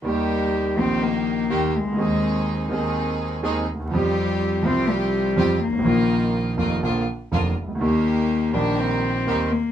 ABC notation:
X:1
M:4/4
L:1/16
Q:1/4=123
K:Eb
V:1 name="String section"
[B,EG]6 [B,EG]6 [B,EG]2 z2 | [E,CEA]6 [E,CEA]6 [E,CEA]2 z2 | [CFG]6 [CFG]6 [CFG]2 z2 | [B,EF]6 [B,EF]2 [B,DF]2 z2 [B,DF]2 z2 |
[B,EG]6 [B,EG]6 [B,EG]2 z2 |]
V:2 name="Cello"
G,6 C2 B,6 A,2- | A,6 z8 z2 | G,6 C2 G,6 B,2- | B,6 z8 z2 |
B,6 D2 C6 B,2 |]
V:3 name="Grand piano" clef=bass
[E,,E,G,B,G]6 [B,,,B,,E,G,B,G]6 [E,,E,G,B,G]2 z/2 C,,/2 _D,,/2 =D,,/2 | [E,,E,A,CA]6 [E,,E,A,CA]6 [E,,E,A,CA]2 z/2 D,,/2 E,,/2 _F,,/2 | [F,,F,G,CG]6 [C,,C,F,G,CG]6 [F,,F,G,CG]2 z/2 G,,,/2 A,,,/2 =A,,,/2 | [B,,,B,,E,F,B,F]6 [F,,,F,,E,F,B,F]2 [B,,,B,,D,F,B,F]2 z2 [F,,,F,,D,F,B,F]2 z/2 C,,/2 _D,,/2 =D,,/2 |
[E,,E,G,B,G]6 [B,,,B,,E,G,B,G]6 [E,,E,G,B,G]2 z2 |]